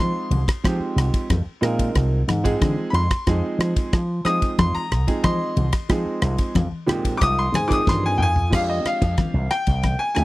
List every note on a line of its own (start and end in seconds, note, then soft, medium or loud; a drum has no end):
0.00 0.12 F3 medium
0.00 0.39 F3 medium
0.00 0.40 G#3 medium
0.00 0.39 C4 medium
0.00 0.40 D#4 medium
0.00 0.40 F4 medium
0.00 1.26 C6 loud
0.30 0.44 C2 loud
0.30 ride medium
0.30 high conga medium
0.48 kick medium
0.48 cross-stick medium
0.48 ride medium
0.64 1.33 F3 medium
0.64 0.78 F3 loud
0.64 1.33 G#3 medium
0.64 1.33 C4 medium
0.64 1.33 D#4 medium
0.64 1.34 G4 medium
0.64 kick medium
0.64 cross-stick medium
0.64 ride medium
0.64 muted conga soft
0.79 muted slap bass stroke soft
0.96 1.10 C2 loud
0.96 cross-stick medium
0.96 ride medium
1.14 kick medium
1.14 ride medium
1.30 1.43 F2 medium
1.30 kick loud
1.30 cross-stick medium
1.30 ride medium
1.30 high conga medium
1.46 muted slap bass stroke soft
1.61 1.89 A#2 medium
1.61 2.19 F3 medium
1.61 2.19 G#3 medium
1.61 2.19 C4 medium
1.61 2.20 D#4 medium
1.61 2.20 A#4 medium
1.61 cross-stick medium
1.61 ride medium
1.79 kick medium
1.79 ride medium
1.95 2.22 C2 medium
1.95 kick medium
1.95 cross-stick medium
1.95 ride medium
2.28 2.55 G#2 medium
2.28 cross-stick medium
2.28 ride medium
2.28 high conga medium
2.44 3.02 F3 medium
2.44 3.02 G#3 medium
2.44 3.02 C4 medium
2.44 3.02 D#4 medium
2.44 3.02 G#4 loud
2.44 kick medium
2.44 ride medium
2.62 2.75 D3 medium
2.62 kick loud
2.62 cross-stick medium
2.62 ride medium
2.62 muted conga soft
2.62 high conga medium
2.90 3.07 F2 medium
2.90 2.94 B5 medium
2.90 ride medium
2.95 4.22 C6 medium
3.11 kick medium
3.11 cross-stick medium
3.11 ride medium
3.27 3.40 F2 loud
3.27 3.96 F3 medium
3.27 3.96 G#3 medium
3.27 3.96 C4 medium
3.27 3.96 D#4 medium
3.27 3.96 G#4 medium
3.27 kick medium
3.27 cross-stick medium
3.27 ride medium
3.27 muted conga soft
3.59 3.73 F3 medium
3.59 cross-stick medium
3.59 ride medium
3.59 muted conga soft
3.76 muted slap bass stroke soft
3.76 kick medium
3.76 ride medium
3.93 4.20 F3 loud
3.93 kick loud
3.93 cross-stick medium
3.93 ride soft
4.25 4.82 F3 medium
4.25 4.39 F3 loud
4.25 4.83 G#3 medium
4.25 4.83 C4 medium
4.25 4.83 D#4 medium
4.25 4.83 G#4 medium
4.25 4.57 D#6 loud
4.25 cross-stick medium
4.25 ride medium
4.42 muted slap bass stroke soft
4.42 kick medium
4.42 ride medium
4.59 4.72 F2 medium
4.59 4.74 C6 loud
4.59 kick medium
4.59 cross-stick medium
4.59 ride medium
4.59 muted conga soft
4.59 high conga medium
4.75 5.22 A#5 medium
4.75 muted slap bass stroke soft
4.92 5.05 C2 medium
4.92 cross-stick medium
4.92 ride medium
5.07 5.65 F3 medium
5.07 5.65 G#3 medium
5.07 5.65 C4 medium
5.07 5.65 D#4 medium
5.07 5.65 G#4 medium
5.07 kick medium
5.07 ride medium
5.24 5.37 F3 medium
5.24 6.51 D#5 medium
5.24 6.51 C6 loud
5.24 kick loud
5.24 cross-stick medium
5.24 ride medium
5.24 muted conga soft
5.24 high conga medium
5.57 5.70 C2 loud
5.57 ride medium
5.57 high conga medium
5.73 muted slap bass stroke soft
5.73 kick medium
5.73 cross-stick loud
5.73 ride medium
5.89 6.58 F3 medium
5.89 6.03 F3 loud
5.89 6.58 G#3 medium
5.89 6.59 C4 medium
5.89 6.59 D#4 medium
5.89 6.59 G#4 medium
5.89 kick medium
5.89 cross-stick medium
5.89 ride medium
5.89 muted conga soft
6.06 muted slap bass stroke soft
6.22 6.36 C2 loud
6.22 cross-stick medium
6.22 ride medium
6.22 muted conga soft
6.38 kick medium
6.38 ride medium
6.55 6.69 F2 medium
6.55 kick loud
6.55 cross-stick medium
6.55 ride medium
6.55 high conga loud
6.72 muted slap bass stroke soft
6.86 7.14 A#2 medium
6.86 7.45 F3 medium
6.86 7.45 G#3 medium
6.86 7.45 C4 medium
6.86 7.45 D#4 medium
6.86 7.45 G4 medium
6.86 cross-stick medium
6.86 ride medium
6.86 low conga medium
7.05 kick medium
7.05 ride medium
7.17 7.48 C2 medium
7.17 7.21 D6 medium
7.17 kick medium
7.17 ride medium
7.17 muted conga soft
7.22 7.37 D#6 loud
7.22 cross-stick medium
7.39 7.53 C6 medium
7.52 7.80 G#2 medium
7.52 7.70 G#5 medium
7.52 cross-stick medium
7.52 ride medium
7.52 high conga medium
7.68 8.27 D#3 medium
7.68 8.26 F3 medium
7.68 8.27 C4 medium
7.68 8.27 D#4 medium
7.68 8.27 G#4 medium
7.68 7.71 D6 medium
7.68 kick medium
7.68 ride medium
7.73 7.87 D#6 loud
7.87 8.16 G2 medium
7.87 8.03 C6 medium
7.87 kick loud
7.87 snare medium
7.87 muted conga soft
7.87 high conga medium
8.04 8.20 G#5 medium
8.04 high tom medium
8.18 8.48 F2 medium
8.18 8.21 G5 medium
8.18 mid tom medium
8.22 8.53 G#5 loud
8.36 floor tom medium
8.50 8.79 F2 medium
8.50 9.43 F3 medium
8.50 9.43 G#3 medium
8.50 9.43 C4 medium
8.50 9.44 D4 medium
8.50 9.44 G4 medium
8.50 kick medium
8.50 cross-stick medium
8.50 crash medium
8.50 muted conga soft
8.54 8.59 F5 medium
8.69 8.86 D#5 medium
8.85 9.53 F5 medium
8.85 muted slap bass stroke soft
8.85 cross-stick medium
8.85 ride medium
8.85 muted conga soft
9.01 9.15 F2 medium
9.01 kick medium
9.01 ride medium
9.18 kick medium
9.18 cross-stick medium
9.18 ride soft
9.18 high conga medium
9.34 9.48 C2 loud
9.51 9.97 G5 loud
9.51 cross-stick medium
9.51 ride medium
9.67 9.94 C2 medium
9.67 kick medium
9.67 ride medium
9.83 kick medium
9.83 cross-stick medium
9.83 ride medium
9.83 muted conga soft
9.83 high conga soft
9.99 10.13 G#5 medium
10.15 10.24 D2 medium
10.15 10.24 F3 medium
10.15 10.24 G#3 medium
10.15 10.24 C4 medium
10.15 10.24 D4 soft
10.15 10.24 G4 medium
10.15 10.24 G#5 medium
10.15 cross-stick medium
10.15 ride medium